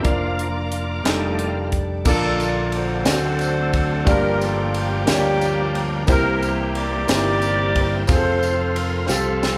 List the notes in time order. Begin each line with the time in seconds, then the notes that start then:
0.02 F1 F3 A#3 D4 F4 D5 F5 A#5 D6, kick, closed hi-hat
0.39 closed hi-hat
0.72 closed hi-hat
1.04 F1 D#3 G3 A3 D4 D#4 A4 D5 G5 A5, snare, closed hi-hat
1.39 closed hi-hat
1.72 kick, closed hi-hat
2.05 A#1 A#2 D3 A#3 D4 F4 A4 D5, kick, crash, tambourine
2.40 A4, ride, tambourine
2.72 F#4 A4, ride
2.76 C5
3.04 D2 D3 F#3 A3 C4 D4 F4 A4 D5, snare, ride, tambourine
3.12 F#4
3.39 ride, tambourine
3.73 kick, ride
4.05 G1 G2 F3 G3 A3 A#3 D4 F4 G4 D5, kick, ride, tambourine
4.09 A#3 A#4
4.41 A4, ride, tambourine
4.74 G4, ride
5.06 D2 A#3 D4 F4 G4 C#5, snare, ride, tambourine
5.11 A#3 D4 G4
5.15 D5
5.41 ride, tambourine
5.75 ride
6.07 C2 C3 E3 G3 A#3 C4 E4 G4 A#4 C5, kick, ride, tambourine
6.11 E4
6.42 A#4, ride, tambourine
6.75 G4 A#4 D5, ride
7.08 G1 A#3 C4 D#4 G4 C5, snare, ride, tambourine
7.15 E4
7.42 ride, tambourine
7.75 kick, ride
8.07 F1 G#3 C4 F4 G#4, kick, ride, tambourine
8.12 F3 F4 A4 C5
8.43 ride, tambourine
8.63 C5
8.76 A#4, ride
9.06 C2 C4 F4 G4, snare, tambourine
9.11 C4 F4 A4
9.43 snare, tambourine